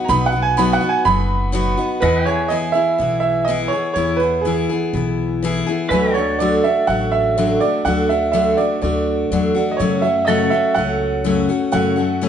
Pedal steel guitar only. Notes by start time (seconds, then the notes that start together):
Already playing: B4 D#5 F#5
2.02 B4 D#5 F#5
2.23 E5
2.29 G#5
5.89 B4 E5 G#5
6.14 A4 D5 F#5
10.28 A4 C#5 F#5